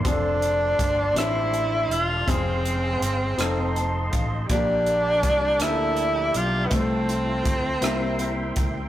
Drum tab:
HH |xxxxxx|xxxxxx|xxxxxx|xxxxxx|
SD |---r--|---r--|---r--|---r--|
BD |o-o---|o----o|o-o---|o-o--o|